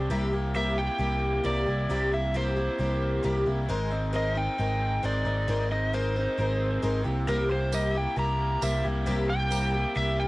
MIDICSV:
0, 0, Header, 1, 7, 480
1, 0, Start_track
1, 0, Tempo, 448430
1, 102, Time_signature, 4, 2, 24, 8
1, 11002, End_track
2, 0, Start_track
2, 0, Title_t, "Electric slide guitar"
2, 0, Program_c, 0, 29
2, 606, Note_on_c, 0, 76, 80
2, 830, Note_off_c, 0, 76, 0
2, 834, Note_on_c, 0, 79, 82
2, 1532, Note_off_c, 0, 79, 0
2, 1564, Note_on_c, 0, 74, 76
2, 2257, Note_off_c, 0, 74, 0
2, 2289, Note_on_c, 0, 76, 79
2, 2514, Note_off_c, 0, 76, 0
2, 2532, Note_on_c, 0, 72, 74
2, 3455, Note_off_c, 0, 72, 0
2, 4453, Note_on_c, 0, 75, 82
2, 4677, Note_off_c, 0, 75, 0
2, 4682, Note_on_c, 0, 79, 87
2, 5377, Note_off_c, 0, 79, 0
2, 5411, Note_on_c, 0, 74, 80
2, 6101, Note_off_c, 0, 74, 0
2, 6119, Note_on_c, 0, 75, 88
2, 6349, Note_off_c, 0, 75, 0
2, 6359, Note_on_c, 0, 72, 92
2, 7286, Note_off_c, 0, 72, 0
2, 7802, Note_on_c, 0, 70, 100
2, 8029, Note_off_c, 0, 70, 0
2, 8049, Note_on_c, 0, 72, 74
2, 8272, Note_off_c, 0, 72, 0
2, 8290, Note_on_c, 0, 75, 77
2, 8512, Note_off_c, 0, 75, 0
2, 8536, Note_on_c, 0, 79, 91
2, 8755, Note_off_c, 0, 79, 0
2, 8770, Note_on_c, 0, 82, 96
2, 9223, Note_off_c, 0, 82, 0
2, 9241, Note_on_c, 0, 76, 101
2, 9466, Note_off_c, 0, 76, 0
2, 9950, Note_on_c, 0, 79, 93
2, 10642, Note_off_c, 0, 79, 0
2, 10674, Note_on_c, 0, 76, 100
2, 10899, Note_off_c, 0, 76, 0
2, 10913, Note_on_c, 0, 79, 90
2, 11002, Note_off_c, 0, 79, 0
2, 11002, End_track
3, 0, Start_track
3, 0, Title_t, "Tonewheel organ"
3, 0, Program_c, 1, 16
3, 91, Note_on_c, 1, 67, 65
3, 91, Note_on_c, 1, 70, 66
3, 95, Note_on_c, 1, 64, 70
3, 98, Note_on_c, 1, 60, 64
3, 3911, Note_off_c, 1, 67, 0
3, 3911, Note_off_c, 1, 70, 0
3, 3913, Note_off_c, 1, 64, 0
3, 3914, Note_off_c, 1, 60, 0
3, 3947, Note_on_c, 1, 68, 66
3, 3950, Note_on_c, 1, 63, 65
3, 3951, Note_on_c, 1, 60, 73
3, 3958, Note_on_c, 1, 70, 70
3, 7512, Note_off_c, 1, 68, 0
3, 7513, Note_off_c, 1, 60, 0
3, 7513, Note_off_c, 1, 63, 0
3, 7517, Note_off_c, 1, 70, 0
3, 7549, Note_on_c, 1, 70, 64
3, 7551, Note_on_c, 1, 64, 63
3, 7555, Note_on_c, 1, 60, 65
3, 7555, Note_on_c, 1, 67, 66
3, 11002, Note_off_c, 1, 60, 0
3, 11002, Note_off_c, 1, 64, 0
3, 11002, Note_off_c, 1, 67, 0
3, 11002, Note_off_c, 1, 70, 0
3, 11002, End_track
4, 0, Start_track
4, 0, Title_t, "Twelve-string acoustic guitar"
4, 0, Program_c, 2, 25
4, 0, Note_on_c, 2, 60, 44
4, 106, Note_on_c, 2, 48, 79
4, 107, Note_off_c, 2, 60, 0
4, 107, Note_on_c, 2, 55, 87
4, 112, Note_on_c, 2, 58, 91
4, 116, Note_on_c, 2, 64, 100
4, 120, Note_on_c, 2, 67, 98
4, 328, Note_off_c, 2, 67, 0
4, 339, Note_off_c, 2, 64, 0
4, 341, Note_on_c, 2, 67, 51
4, 346, Note_off_c, 2, 48, 0
4, 346, Note_off_c, 2, 55, 0
4, 348, Note_off_c, 2, 58, 0
4, 352, Note_on_c, 2, 64, 53
4, 360, Note_on_c, 2, 58, 46
4, 574, Note_off_c, 2, 58, 0
4, 578, Note_off_c, 2, 67, 0
4, 580, Note_on_c, 2, 48, 76
4, 582, Note_off_c, 2, 64, 0
4, 586, Note_on_c, 2, 55, 72
4, 587, Note_on_c, 2, 58, 71
4, 591, Note_on_c, 2, 67, 81
4, 595, Note_on_c, 2, 64, 77
4, 803, Note_off_c, 2, 67, 0
4, 816, Note_on_c, 2, 67, 42
4, 818, Note_off_c, 2, 64, 0
4, 821, Note_off_c, 2, 58, 0
4, 823, Note_off_c, 2, 48, 0
4, 827, Note_off_c, 2, 55, 0
4, 831, Note_on_c, 2, 64, 41
4, 834, Note_on_c, 2, 58, 44
4, 1051, Note_off_c, 2, 58, 0
4, 1053, Note_on_c, 2, 55, 58
4, 1060, Note_off_c, 2, 64, 0
4, 1062, Note_off_c, 2, 67, 0
4, 1064, Note_on_c, 2, 58, 69
4, 1073, Note_on_c, 2, 64, 65
4, 1076, Note_on_c, 2, 67, 60
4, 1530, Note_off_c, 2, 55, 0
4, 1535, Note_off_c, 2, 64, 0
4, 1537, Note_off_c, 2, 67, 0
4, 1537, Note_on_c, 2, 48, 75
4, 1541, Note_off_c, 2, 58, 0
4, 1542, Note_on_c, 2, 55, 76
4, 1546, Note_on_c, 2, 58, 69
4, 1548, Note_on_c, 2, 64, 86
4, 1550, Note_on_c, 2, 67, 85
4, 1768, Note_off_c, 2, 67, 0
4, 1780, Note_off_c, 2, 64, 0
4, 1781, Note_on_c, 2, 67, 47
4, 1784, Note_off_c, 2, 48, 0
4, 1787, Note_off_c, 2, 55, 0
4, 1788, Note_off_c, 2, 58, 0
4, 1793, Note_on_c, 2, 64, 46
4, 1803, Note_on_c, 2, 58, 39
4, 2024, Note_off_c, 2, 58, 0
4, 2026, Note_off_c, 2, 67, 0
4, 2028, Note_on_c, 2, 48, 76
4, 2032, Note_off_c, 2, 64, 0
4, 2032, Note_on_c, 2, 55, 82
4, 2037, Note_on_c, 2, 58, 85
4, 2040, Note_on_c, 2, 67, 95
4, 2043, Note_on_c, 2, 64, 81
4, 2253, Note_off_c, 2, 67, 0
4, 2262, Note_off_c, 2, 64, 0
4, 2266, Note_on_c, 2, 67, 48
4, 2270, Note_off_c, 2, 48, 0
4, 2272, Note_off_c, 2, 55, 0
4, 2274, Note_on_c, 2, 64, 45
4, 2275, Note_off_c, 2, 58, 0
4, 2289, Note_on_c, 2, 58, 41
4, 2504, Note_on_c, 2, 48, 79
4, 2505, Note_off_c, 2, 58, 0
4, 2508, Note_on_c, 2, 55, 88
4, 2509, Note_off_c, 2, 67, 0
4, 2510, Note_off_c, 2, 64, 0
4, 2517, Note_on_c, 2, 58, 90
4, 2520, Note_on_c, 2, 67, 81
4, 2523, Note_on_c, 2, 64, 76
4, 2728, Note_off_c, 2, 67, 0
4, 2733, Note_off_c, 2, 64, 0
4, 2741, Note_on_c, 2, 67, 51
4, 2745, Note_on_c, 2, 64, 43
4, 2747, Note_off_c, 2, 58, 0
4, 2749, Note_off_c, 2, 48, 0
4, 2751, Note_off_c, 2, 55, 0
4, 2760, Note_on_c, 2, 58, 42
4, 2977, Note_off_c, 2, 58, 0
4, 2979, Note_on_c, 2, 55, 60
4, 2986, Note_off_c, 2, 64, 0
4, 2987, Note_off_c, 2, 67, 0
4, 2990, Note_on_c, 2, 58, 70
4, 2998, Note_on_c, 2, 64, 63
4, 3003, Note_on_c, 2, 67, 64
4, 3451, Note_off_c, 2, 55, 0
4, 3454, Note_off_c, 2, 64, 0
4, 3454, Note_on_c, 2, 48, 78
4, 3459, Note_off_c, 2, 58, 0
4, 3459, Note_off_c, 2, 67, 0
4, 3463, Note_on_c, 2, 58, 92
4, 3464, Note_on_c, 2, 55, 85
4, 3467, Note_on_c, 2, 64, 92
4, 3472, Note_on_c, 2, 67, 88
4, 3686, Note_off_c, 2, 67, 0
4, 3699, Note_off_c, 2, 64, 0
4, 3699, Note_on_c, 2, 67, 59
4, 3704, Note_off_c, 2, 48, 0
4, 3709, Note_off_c, 2, 55, 0
4, 3709, Note_off_c, 2, 58, 0
4, 3712, Note_on_c, 2, 64, 53
4, 3723, Note_on_c, 2, 58, 46
4, 3945, Note_on_c, 2, 56, 89
4, 3947, Note_off_c, 2, 64, 0
4, 3947, Note_off_c, 2, 67, 0
4, 3949, Note_off_c, 2, 58, 0
4, 3952, Note_on_c, 2, 63, 92
4, 3953, Note_on_c, 2, 60, 93
4, 3957, Note_on_c, 2, 70, 111
4, 4166, Note_off_c, 2, 70, 0
4, 4178, Note_on_c, 2, 70, 57
4, 4179, Note_off_c, 2, 63, 0
4, 4190, Note_off_c, 2, 56, 0
4, 4191, Note_off_c, 2, 60, 0
4, 4192, Note_on_c, 2, 63, 57
4, 4204, Note_on_c, 2, 60, 51
4, 4408, Note_off_c, 2, 60, 0
4, 4416, Note_off_c, 2, 63, 0
4, 4418, Note_on_c, 2, 56, 84
4, 4420, Note_on_c, 2, 60, 84
4, 4423, Note_off_c, 2, 70, 0
4, 4429, Note_on_c, 2, 63, 80
4, 4436, Note_on_c, 2, 70, 91
4, 4643, Note_off_c, 2, 70, 0
4, 4656, Note_on_c, 2, 70, 52
4, 4657, Note_off_c, 2, 63, 0
4, 4666, Note_off_c, 2, 56, 0
4, 4668, Note_off_c, 2, 60, 0
4, 4670, Note_on_c, 2, 63, 48
4, 4679, Note_on_c, 2, 60, 44
4, 4896, Note_off_c, 2, 60, 0
4, 4904, Note_on_c, 2, 56, 64
4, 4906, Note_off_c, 2, 63, 0
4, 4906, Note_off_c, 2, 70, 0
4, 4909, Note_on_c, 2, 60, 57
4, 4919, Note_on_c, 2, 63, 66
4, 4923, Note_on_c, 2, 70, 65
4, 5368, Note_off_c, 2, 56, 0
4, 5380, Note_off_c, 2, 60, 0
4, 5381, Note_on_c, 2, 56, 73
4, 5383, Note_off_c, 2, 63, 0
4, 5384, Note_on_c, 2, 60, 81
4, 5392, Note_off_c, 2, 70, 0
4, 5396, Note_on_c, 2, 63, 84
4, 5397, Note_on_c, 2, 70, 89
4, 5608, Note_off_c, 2, 70, 0
4, 5621, Note_on_c, 2, 70, 58
4, 5625, Note_off_c, 2, 63, 0
4, 5628, Note_off_c, 2, 56, 0
4, 5629, Note_off_c, 2, 60, 0
4, 5637, Note_on_c, 2, 63, 46
4, 5644, Note_on_c, 2, 60, 43
4, 5852, Note_off_c, 2, 60, 0
4, 5860, Note_off_c, 2, 63, 0
4, 5862, Note_off_c, 2, 70, 0
4, 5863, Note_on_c, 2, 56, 87
4, 5865, Note_on_c, 2, 60, 84
4, 5873, Note_on_c, 2, 63, 81
4, 5875, Note_on_c, 2, 70, 97
4, 6098, Note_off_c, 2, 70, 0
4, 6108, Note_off_c, 2, 56, 0
4, 6109, Note_off_c, 2, 60, 0
4, 6109, Note_off_c, 2, 63, 0
4, 6111, Note_on_c, 2, 70, 45
4, 6122, Note_on_c, 2, 63, 47
4, 6130, Note_on_c, 2, 60, 38
4, 6338, Note_off_c, 2, 60, 0
4, 6344, Note_off_c, 2, 63, 0
4, 6347, Note_off_c, 2, 70, 0
4, 6349, Note_on_c, 2, 56, 78
4, 6351, Note_on_c, 2, 60, 78
4, 6357, Note_on_c, 2, 63, 76
4, 6359, Note_on_c, 2, 70, 89
4, 6578, Note_off_c, 2, 70, 0
4, 6590, Note_on_c, 2, 70, 54
4, 6591, Note_off_c, 2, 56, 0
4, 6592, Note_off_c, 2, 60, 0
4, 6592, Note_off_c, 2, 63, 0
4, 6605, Note_on_c, 2, 63, 45
4, 6617, Note_on_c, 2, 60, 41
4, 6822, Note_off_c, 2, 60, 0
4, 6826, Note_on_c, 2, 56, 60
4, 6830, Note_off_c, 2, 63, 0
4, 6832, Note_off_c, 2, 70, 0
4, 6835, Note_on_c, 2, 60, 61
4, 6843, Note_on_c, 2, 63, 66
4, 6850, Note_on_c, 2, 70, 68
4, 7289, Note_off_c, 2, 56, 0
4, 7300, Note_off_c, 2, 63, 0
4, 7302, Note_off_c, 2, 60, 0
4, 7302, Note_on_c, 2, 56, 81
4, 7306, Note_on_c, 2, 60, 88
4, 7313, Note_off_c, 2, 70, 0
4, 7313, Note_on_c, 2, 63, 91
4, 7317, Note_on_c, 2, 70, 91
4, 7532, Note_off_c, 2, 70, 0
4, 7536, Note_on_c, 2, 67, 57
4, 7546, Note_off_c, 2, 63, 0
4, 7547, Note_off_c, 2, 56, 0
4, 7548, Note_off_c, 2, 60, 0
4, 7551, Note_on_c, 2, 64, 53
4, 7560, Note_on_c, 2, 58, 46
4, 7781, Note_off_c, 2, 58, 0
4, 7781, Note_off_c, 2, 64, 0
4, 7783, Note_off_c, 2, 67, 0
4, 7785, Note_on_c, 2, 48, 89
4, 7791, Note_on_c, 2, 55, 85
4, 7793, Note_on_c, 2, 58, 91
4, 7794, Note_on_c, 2, 64, 84
4, 7797, Note_on_c, 2, 67, 87
4, 8009, Note_off_c, 2, 67, 0
4, 8022, Note_off_c, 2, 64, 0
4, 8022, Note_on_c, 2, 67, 56
4, 8027, Note_off_c, 2, 48, 0
4, 8030, Note_off_c, 2, 55, 0
4, 8032, Note_off_c, 2, 58, 0
4, 8035, Note_on_c, 2, 64, 51
4, 8047, Note_on_c, 2, 58, 42
4, 8260, Note_off_c, 2, 64, 0
4, 8262, Note_off_c, 2, 58, 0
4, 8263, Note_on_c, 2, 48, 75
4, 8265, Note_off_c, 2, 67, 0
4, 8266, Note_on_c, 2, 55, 87
4, 8273, Note_on_c, 2, 64, 81
4, 8275, Note_on_c, 2, 58, 82
4, 8279, Note_on_c, 2, 67, 84
4, 8485, Note_off_c, 2, 67, 0
4, 8496, Note_off_c, 2, 64, 0
4, 8497, Note_on_c, 2, 67, 48
4, 8506, Note_off_c, 2, 48, 0
4, 8507, Note_off_c, 2, 55, 0
4, 8509, Note_on_c, 2, 64, 45
4, 8511, Note_off_c, 2, 58, 0
4, 8524, Note_on_c, 2, 58, 42
4, 8733, Note_off_c, 2, 58, 0
4, 8738, Note_off_c, 2, 64, 0
4, 8738, Note_on_c, 2, 55, 64
4, 8742, Note_off_c, 2, 67, 0
4, 8746, Note_on_c, 2, 58, 67
4, 8751, Note_on_c, 2, 64, 75
4, 8761, Note_on_c, 2, 67, 68
4, 9213, Note_off_c, 2, 58, 0
4, 9220, Note_on_c, 2, 48, 70
4, 9222, Note_off_c, 2, 55, 0
4, 9223, Note_off_c, 2, 64, 0
4, 9226, Note_on_c, 2, 55, 82
4, 9226, Note_on_c, 2, 58, 84
4, 9234, Note_off_c, 2, 67, 0
4, 9236, Note_on_c, 2, 64, 84
4, 9238, Note_on_c, 2, 67, 88
4, 9449, Note_off_c, 2, 67, 0
4, 9459, Note_off_c, 2, 64, 0
4, 9461, Note_on_c, 2, 67, 49
4, 9463, Note_off_c, 2, 48, 0
4, 9465, Note_off_c, 2, 55, 0
4, 9465, Note_off_c, 2, 58, 0
4, 9472, Note_on_c, 2, 64, 51
4, 9482, Note_on_c, 2, 58, 42
4, 9696, Note_off_c, 2, 58, 0
4, 9696, Note_off_c, 2, 64, 0
4, 9696, Note_on_c, 2, 48, 86
4, 9702, Note_on_c, 2, 55, 97
4, 9703, Note_off_c, 2, 67, 0
4, 9709, Note_on_c, 2, 58, 103
4, 9709, Note_on_c, 2, 64, 99
4, 9714, Note_on_c, 2, 67, 92
4, 9925, Note_off_c, 2, 67, 0
4, 9935, Note_off_c, 2, 64, 0
4, 9938, Note_on_c, 2, 67, 46
4, 9940, Note_off_c, 2, 48, 0
4, 9942, Note_off_c, 2, 58, 0
4, 9943, Note_off_c, 2, 55, 0
4, 9948, Note_on_c, 2, 64, 46
4, 9954, Note_on_c, 2, 58, 42
4, 10167, Note_off_c, 2, 58, 0
4, 10171, Note_off_c, 2, 64, 0
4, 10173, Note_off_c, 2, 67, 0
4, 10173, Note_on_c, 2, 48, 86
4, 10176, Note_on_c, 2, 55, 79
4, 10180, Note_on_c, 2, 58, 97
4, 10184, Note_on_c, 2, 64, 80
4, 10186, Note_on_c, 2, 67, 95
4, 10411, Note_off_c, 2, 67, 0
4, 10415, Note_off_c, 2, 64, 0
4, 10417, Note_off_c, 2, 48, 0
4, 10419, Note_off_c, 2, 55, 0
4, 10420, Note_off_c, 2, 58, 0
4, 10424, Note_on_c, 2, 67, 49
4, 10428, Note_on_c, 2, 64, 48
4, 10445, Note_on_c, 2, 58, 42
4, 10645, Note_off_c, 2, 58, 0
4, 10649, Note_on_c, 2, 55, 63
4, 10651, Note_off_c, 2, 64, 0
4, 10657, Note_off_c, 2, 67, 0
4, 10658, Note_on_c, 2, 58, 69
4, 10664, Note_on_c, 2, 64, 59
4, 10670, Note_on_c, 2, 67, 81
4, 11002, Note_off_c, 2, 55, 0
4, 11002, Note_off_c, 2, 58, 0
4, 11002, Note_off_c, 2, 64, 0
4, 11002, Note_off_c, 2, 67, 0
4, 11002, End_track
5, 0, Start_track
5, 0, Title_t, "Overdriven electric guitar"
5, 0, Program_c, 3, 29
5, 1318, Note_on_c, 3, 58, 57
5, 2275, Note_off_c, 3, 58, 0
5, 3233, Note_on_c, 3, 58, 58
5, 3972, Note_off_c, 3, 58, 0
5, 5137, Note_on_c, 3, 60, 68
5, 6101, Note_off_c, 3, 60, 0
5, 7071, Note_on_c, 3, 60, 64
5, 7553, Note_on_c, 3, 48, 62
5, 7785, Note_off_c, 3, 48, 0
5, 8021, Note_off_c, 3, 60, 0
5, 8981, Note_on_c, 3, 58, 63
5, 9915, Note_off_c, 3, 58, 0
5, 10883, Note_on_c, 3, 58, 66
5, 11002, Note_off_c, 3, 58, 0
5, 11002, End_track
6, 0, Start_track
6, 0, Title_t, "Picked electric bass"
6, 0, Program_c, 4, 34
6, 106, Note_on_c, 4, 36, 109
6, 942, Note_off_c, 4, 36, 0
6, 1063, Note_on_c, 4, 36, 95
6, 1483, Note_off_c, 4, 36, 0
6, 1544, Note_on_c, 4, 36, 86
6, 1756, Note_off_c, 4, 36, 0
6, 1792, Note_on_c, 4, 36, 87
6, 2000, Note_off_c, 4, 36, 0
6, 2026, Note_on_c, 4, 36, 99
6, 2864, Note_off_c, 4, 36, 0
6, 2989, Note_on_c, 4, 36, 90
6, 3408, Note_off_c, 4, 36, 0
6, 3473, Note_on_c, 4, 36, 87
6, 3682, Note_off_c, 4, 36, 0
6, 3712, Note_on_c, 4, 36, 83
6, 3922, Note_off_c, 4, 36, 0
6, 3954, Note_on_c, 4, 32, 108
6, 4788, Note_off_c, 4, 32, 0
6, 4915, Note_on_c, 4, 32, 91
6, 5332, Note_off_c, 4, 32, 0
6, 5389, Note_on_c, 4, 32, 90
6, 5599, Note_off_c, 4, 32, 0
6, 5628, Note_on_c, 4, 32, 80
6, 5839, Note_off_c, 4, 32, 0
6, 5870, Note_on_c, 4, 32, 107
6, 6704, Note_off_c, 4, 32, 0
6, 6831, Note_on_c, 4, 32, 87
6, 7248, Note_off_c, 4, 32, 0
6, 7312, Note_on_c, 4, 32, 94
6, 7520, Note_off_c, 4, 32, 0
6, 7549, Note_on_c, 4, 36, 79
6, 7758, Note_off_c, 4, 36, 0
6, 7790, Note_on_c, 4, 36, 109
6, 8622, Note_off_c, 4, 36, 0
6, 8743, Note_on_c, 4, 36, 87
6, 9160, Note_off_c, 4, 36, 0
6, 9231, Note_on_c, 4, 36, 89
6, 9436, Note_off_c, 4, 36, 0
6, 9473, Note_on_c, 4, 36, 78
6, 9678, Note_off_c, 4, 36, 0
6, 9701, Note_on_c, 4, 36, 112
6, 10533, Note_off_c, 4, 36, 0
6, 10662, Note_on_c, 4, 36, 94
6, 11002, Note_off_c, 4, 36, 0
6, 11002, End_track
7, 0, Start_track
7, 0, Title_t, "Drums"
7, 8269, Note_on_c, 9, 54, 79
7, 8376, Note_off_c, 9, 54, 0
7, 9228, Note_on_c, 9, 54, 87
7, 9335, Note_off_c, 9, 54, 0
7, 10187, Note_on_c, 9, 54, 80
7, 10294, Note_off_c, 9, 54, 0
7, 11002, End_track
0, 0, End_of_file